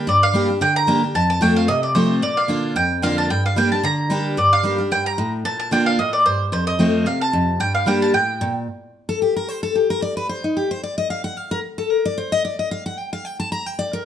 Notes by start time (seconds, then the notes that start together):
0.07 G2 D5
0.23 F5
0.33 G3 A#3 D4 G4
0.48 D4 G4
0.61 D3 G5
0.76 A#5
0.87 G3 A#3 D4 G4
1.02 D4 G4
1.15 F2 A5
1.30 A5
1.41 F3 A3 C4 F4 G5
1.56 F5
1.68 C3 D#5
1.83 D5
1.95 F3 A3 C4 F4 C5
2.22 A#2 D5
2.37 F5
2.48 D3 A#3 D4 F4
2.76 F2 G5
3.02 D3 A#3 D4 F4 F5
3.18 A5
3.30 G2 G5
3.46 F5
3.56 G3 A#3 D4 G4 G5
3.71 D4 G4 A5
3.83 D3 A#5
4.10 G3 A#3 D4 G4
4.37 G2 D5
4.53 F5
4.63 G3 A#3 D4 G4
4.78 D4 G4
4.92 G2 G5
5.06 A#5
5.18 A2
5.45 A#2 A5
5.60 A5
5.71 D3 A#3 D4 F4 G5
5.86 F5
5.99 A2 D#5
6.13 D5
6.26 G2 C5
6.52 F2 C5
6.67 D#5
6.79 F3 A3 C4 F4
7.06 C3 F5
7.21 A5
7.33 F2
7.60 G2 G5
7.75 F5
7.86 G3 A#3 D4 G4 G5
8.02 A5
8.14 A2 G5
8.41 A#2
9.09 A4
9.22 G4
9.36 A#4
9.48 C5
9.63 A4
9.75 G4
9.90 A#4
10.02 D5
10.17 B4
10.29 C5
10.44 D#4
10.57 G4
10.71 C5
10.83 D5
10.98 D#5
11.10 F5
11.24 F#5
11.37 F5
11.51 A#4
11.78 A4
11.91 A#4
12.05 D5
12.18 C5
12.32 D#5
12.45 D5
12.59 D#5
12.71 F5
12.86 F#5
12.98 G5
13.13 F5
13.25 G5
13.40 A5
13.52 A#5
13.66 G5
13.79 D5
13.93 A#4